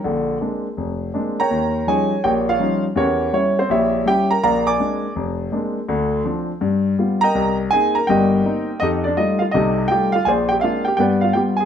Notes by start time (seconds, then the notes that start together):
0.04 A#1 D3
0.41 G#3 A#3 C4 D4
0.77 F1
1.14 G#3 A#3 C4 D4
1.40 A#4 C#5 G5 A#5
1.51 D#2
1.87 F3 G3 C#4 D#4 G#4 C#5 G#5
2.24 A#1 G4 A#4 C#5 G5
2.49 F4 C#5 F5
2.60 F3 G3 C#4 D#4
2.96 E2 E3 C#4 G4 A#4 C#5
3.33 G3 C#4 E4 C#5
3.59 C4 C5
3.69 A#1 E4 G4 C#5 E5
4.06 G3 C#4 E4 G4 G5
4.31 A#4 A#5
4.43 A#1 A#4 D5 F5 A#5
4.67 D5 G#5 D6
4.79 G#3 A#3 C4 D4
5.16 F1
5.52 G#3 A#3 C4 D4
5.88 D2 D3
6.25 F3 C4 D4
6.61 G2
6.99 G3 B3 F4
7.21 A#4 D#5 G5 A#5
7.35 C2
7.71 A#3 C4 D#4 G#4 G#5
7.95 A#4 A#5
8.07 G1 G2 G4 A#4 D#5 G5
8.45 A#3 C4 D#4
8.80 F2 D#4 G4 A4 D#5
9.04 D4 D5
9.17 G3 A3 D#4 F4 D#5
9.39 F4 F5
9.51 C2 C3 D#4 G4 A4 D#5
9.88 G3 A3 D#4 F4 G4 G5
10.12 F4 F5
10.25 A#1 G#4 C5 D5 G#5
10.49 G4 G5
10.60 G#3 A#3 C4 D4 E5 F5
10.65 F4
10.85 G4 G5
10.97 G2 B3 G4 B4 D5 G5
11.21 F4 F5
11.33 G3 B3 F4 G4 G5
11.57 G#4 G#5